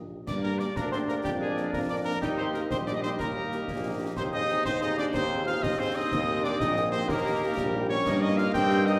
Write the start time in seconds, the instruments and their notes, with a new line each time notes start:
Already playing: tuba A#1
0.11 french horn section A#3 D#4 G4
0.27 tuba G2, trombone section A#3, euphonium D4, woodwind section A#4 D5, cornet D5, piccolo D6, concert bass drum, snare, crash
0.42 euphonium A#3, french horn section A#3 D4 G4, cornet A#4, piccolo A#5
0.59 french horn section A#3 D4 G4, euphonium D4, cornet D5, piccolo D6, snare
0.75 tuba D2, euphonium A#3, trombone section D4, cornet A#4, piccolo A#5, concert bass drum, snare
0.91 french horn section A#3 D4 G4, euphonium C4, cornet C5, piccolo C6, snare
1.07 french horn section A#3 D4 G4, euphonium A#3, cornet A#4, piccolo A#5, snare
1.23 tuba F2, euphonium G3, trombone section D4, cornet G4, piccolo G5, concert bass drum, snare
1.40 euphonium G#3, french horn section A#3 D4 A#4, cornet G#4, piccolo G#5
1.57 french horn section A#3 D4 A#4, snare
1.73 tuba F2, euphonium A#3, cornet A#4, piccolo A#5, concert bass drum, snare
1.88 french horn section A#3 D4 A#4, euphonium D4, cornet D5, piccolo D6
2.05 euphonium A#3, french horn section A#3 D4 A#4, cornet A#4, piccolo A#5
2.21 tuba D#2, euphonium G3, trombone section D#4, cornet G4, woodwind section G4 D#5, piccolo G5, concert bass drum, snare, crash
2.37 french horn section A#3 D#4 G4, euphonium C4, cornet C5, piccolo C6
2.53 french horn section A#3 D#4 G4, euphonium A#3, cornet A#4, piccolo A#5, snare
2.70 tuba A#1, trombone section G3, euphonium C4, cornet C5, piccolo C6, concert bass drum, snare
2.87 french horn section A#3 D#4 G4, euphonium D4, cornet D5, piccolo D6, snare
2.95 euphonium D#4, cornet D#5, piccolo D#6
3.02 french horn section A#3 D#4 G4, euphonium C4, cornet C5, piccolo C6, snare
3.19 tuba D#2, euphonium A#3, cornet A#4, piccolo A#5, concert bass drum, snare
3.36 french horn section A#3 D#4 G4
3.52 french horn section A#3 D#4 G4, snare
3.67 tuba A#1, trombone section A#3, concert bass drum, snare
3.85 french horn section A#3 D#4 G4
4.01 french horn section A#3 D#4 G4
4.16 tuba D#2, euphonium C4, trombone section D#4, woodwind section G#4 C5, cornet C5, piccolo C6, concert bass drum, snare, crash
4.32 french horn section C4 D#4 G#4, euphonium D#4, cornet D#5, piccolo D#6
4.49 french horn section C4 D#4 G#4, snare
4.64 tuba D#2, euphonium C4, cornet C5, piccolo C6, concert bass drum, snare
4.81 french horn section C4 D#4 G#4, euphonium D#4, cornet D#5, piccolo D#6, snare
4.98 french horn section C4 D#4 G#4, euphonium D4, cornet D5, piccolo D6, snare
5.14 tuba D#2, euphonium C4, cornet C5, piccolo C6, concert bass drum, snare
5.31 french horn section C4 D#4 G#4
5.46 french horn section C4 D#4 G#4, euphonium F4, cornet F5, piccolo F6, snare
5.62 tuba D#2, trombone section C4, euphonium D#4, cornet D#5, piccolo D#6, concert bass drum, snare
5.79 french horn section C4 D#4 G#4, euphonium C4, cornet C5, piccolo C6
5.95 french horn section C4 D#4 G#4, euphonium D#4, cornet D#5, piccolo D#6
6.11 tuba D#2, woodwind section D#5, concert bass drum, snare, crash
6.27 french horn section A#3 D#4 G4
6.43 french horn section A#3 D#4 G4, euphonium D4, cornet D5, piccolo D6, snare
6.59 tuba A#1, euphonium D#4, cornet D#5, piccolo D#6, concert bass drum, snare
6.76 french horn section A#3 D#4 G4, snare
6.92 french horn section A#3 D#4 G4, euphonium C4, cornet C5, piccolo C6, snare
7.08 tuba D#2, trombone section A#3, euphonium A#3, woodwind section G4, cornet A#4, piccolo A#5, concert bass drum, snare
7.25 french horn section A#3 D#4 G4
7.41 french horn section A#3 D#4 G4
7.57 tuba A#1, trombone section G3, concert bass drum, snare
7.73 french horn section A#3 D#4 G4
7.89 french horn section A#3 D#4 G4, euphonium C#4, cornet C#5, piccolo C#6
8.05 tuba G2, trombone section A#3, woodwind section A#4 D#5, concert bass drum, snare, crash
8.22 french horn section A#3 C#4 D#4, euphonium D#4, cornet D#5, piccolo D#6
8.38 french horn section A#3 C#4 D#4, euphonium F4, cornet F5, piccolo F6, snare
8.53 tuba G2, trombone section C4, euphonium G4, cornet G5, piccolo G6, concert bass drum, snare
8.70 french horn section A#3 C#4 D#4, snare
8.86 french horn section A#3 C#4 D#4, euphonium D#4, cornet D#5, piccolo D#6, snare